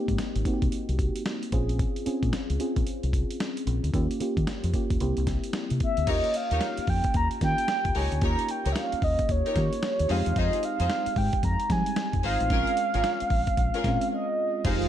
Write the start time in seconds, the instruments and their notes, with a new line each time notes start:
Already playing: fm electric piano A#3 C4 D#4 G4
0.08 fingered electric bass G#2, kick, closed hi-hat
0.18 muted fingered electric bass stroke, snare, closed hi-hat
0.36 fingered electric bass G#1, closed hi-hat
0.45 fm electric piano A#3 C4 D#4 F#4, kick, closed hi-hat
0.54 fm electric piano G4
0.62 fingered electric bass C2, kick, closed hi-hat
0.72 muted fingered electric bass stroke, closed hi-hat
0.89 fingered electric bass C2, closed hi-hat
0.99 kick, closed hi-hat
1.16 closed hi-hat
1.26 snare, closed hi-hat
1.43 closed hi-hat
1.52 fingered electric bass A#1, fm electric piano C4 C#4 F4 G#4, kick, closed hi-hat
1.69 closed hi-hat
1.79 kick, closed hi-hat
1.96 closed hi-hat
2.06 fm electric piano C4 C#4 F4 G#4, muted fingered electric bass stroke, closed hi-hat
2.23 fingered electric bass A#2, kick, closed hi-hat
2.33 muted fingered electric bass stroke, snare, closed hi-hat
2.50 fingered electric bass C#2, closed hi-hat
2.60 fm electric piano C4 C#4 F4 G#4, closed hi-hat
2.76 fingered electric bass A#1, kick, closed hi-hat
2.87 closed hi-hat
3.03 fingered electric bass C2, closed hi-hat
3.13 kick, closed hi-hat
3.31 closed hi-hat
3.40 snare, closed hi-hat
3.57 closed hi-hat
3.67 fingered electric bass A#1, closed hi-hat
3.83 fingered electric bass D2, closed hi-hat
3.94 fingered electric bass D#2, fm electric piano A#3 C#4 F4 G4, kick, closed hi-hat
4.11 closed hi-hat
4.20 fm electric piano A#3 C#4 F4 G4, muted fingered electric bass stroke, closed hi-hat
4.37 fingered electric bass D#3, kick, closed hi-hat
4.47 muted fingered electric bass stroke, snare, closed hi-hat
4.64 fingered electric bass F2, closed hi-hat
4.74 fm electric piano A#3 C#4 F4 G4, kick, closed hi-hat
4.90 fingered electric bass D#2, kick, closed hi-hat
5.00 fingered electric bass C2, fm electric piano A#3 C4 E4 G4, closed hi-hat
5.17 fingered electric bass C2, closed hi-hat
5.27 kick, snare, closed hi-hat
5.44 closed hi-hat
5.53 snare, closed hi-hat
5.70 fingered electric bass C3, closed hi-hat
5.80 soft synth lead E5, kick, closed hi-hat
5.97 fingered electric bass D2, closed hi-hat
6.07 fingered electric bass D#2, fm electric piano A#3 C#4 F4 G4, string section D#4 G4 A#4 C#5, soft synth lead D#5, kick, closed hi-hat, crash
6.24 closed hi-hat
6.34 soft synth lead F5, closed hi-hat
6.51 fingered electric bass D#2, string section D#4 G4 A#4 C#5, closed hi-hat
6.61 snare, closed hi-hat
6.77 muted fingered electric bass stroke, closed hi-hat
6.87 fingered electric bass F2, soft synth lead G5, kick, open hi-hat
7.04 kick, closed hi-hat
7.14 fingered electric bass D#2, soft synth lead A#5, kick, closed hi-hat
7.31 closed hi-hat
7.41 fingered electric bass D#3, fm electric piano A#3 C#4 F4 G4, soft synth lead G5, kick, snare, closed hi-hat
7.58 closed hi-hat
7.68 snare, closed hi-hat
7.85 fingered electric bass D#2, kick, closed hi-hat
7.95 fingered electric bass C#2, string section D#4 G4 A#4 C#5, soft synth lead G#5, open hi-hat
8.12 fingered electric bass D2, closed hi-hat
8.21 fingered electric bass D#2, fm electric piano A#3 C#4 F4 G4, string section D#4 G4 A#4 C#5, soft synth lead A#5, kick, closed hi-hat
8.39 closed hi-hat
8.49 soft synth lead G5, closed hi-hat
8.65 fingered electric bass C#2, string section D#4 G4 A#4 C#5, closed hi-hat
8.72 soft synth lead E5, snare, closed hi-hat
8.77 soft synth lead F5
8.92 muted fingered electric bass stroke, closed hi-hat
9.02 fingered electric bass D#2, soft synth lead D#5, kick, open hi-hat
9.19 kick, closed hi-hat
9.29 fingered electric bass D#2, soft synth lead C#5, kick, closed hi-hat
9.45 string section D#4 G4 A#4 C#5, closed hi-hat
9.56 fingered electric bass D#3, fm electric piano A#3 C#4 F4 G4, kick, snare, closed hi-hat
9.73 closed hi-hat
9.83 snare, closed hi-hat
9.99 fingered electric bass D#2, closed hi-hat
10.09 fingered electric bass F2, fm electric piano G#3 C4 D#4 G4, string section D#4 F4 G#4 C5, soft synth lead F5, open hi-hat
10.26 fingered electric bass E2, closed hi-hat
10.36 fingered electric bass F2, string section D#4 F4 G#4 C5, soft synth lead D#5, kick, closed hi-hat
10.53 closed hi-hat
10.63 soft synth lead F5, closed hi-hat
10.79 fingered electric bass F2, string section D#4 F4 G#4 C5, closed hi-hat
10.90 snare, closed hi-hat
11.06 muted fingered electric bass stroke, closed hi-hat
11.16 fingered electric bass G#2, soft synth lead G5, kick, open hi-hat
11.33 kick, closed hi-hat
11.43 fingered electric bass F2, soft synth lead A#5, kick, closed hi-hat
11.60 closed hi-hat
11.70 fingered electric bass F3, fm electric piano G3 G#3 C4 D#4, soft synth lead G#5, kick, snare, closed hi-hat
11.86 closed hi-hat
11.96 snare, closed hi-hat
12.13 fingered electric bass F2, kick, closed hi-hat
12.23 fingered electric bass G#1, string section D#4 F4 G#4 C5, soft synth lead F5, open hi-hat
12.40 fingered electric bass A1, closed hi-hat
12.50 fingered electric bass A#1, fm electric piano G#3 C4 C#4 F4, string section C#4 F4 G#4 A#4, kick, closed hi-hat
12.67 closed hi-hat
12.77 closed hi-hat
12.94 fingered electric bass G#1, string section C#4 F4 G#4 A#4, closed hi-hat
13.04 snare, closed hi-hat
13.20 muted fingered electric bass stroke, closed hi-hat
13.30 fingered electric bass A#1, kick, open hi-hat
13.47 kick, closed hi-hat
13.57 fingered electric bass A#1, kick, closed hi-hat
13.74 string section C#4 F4 G#4 A#4, closed hi-hat
13.84 fingered electric bass A#2, fm electric piano G#3 C4 C#4 F4, kick, snare, closed hi-hat
14.01 closed hi-hat
14.13 soft synth lead D#5
14.64 fingered electric bass F1, analog synth pad D#3 G#3 F4, fm electric piano G#3 C4 D#4 G4, string section D#4 F4 G#4 C5, soft synth lead F5, kick, closed hi-hat, crash
14.82 closed hi-hat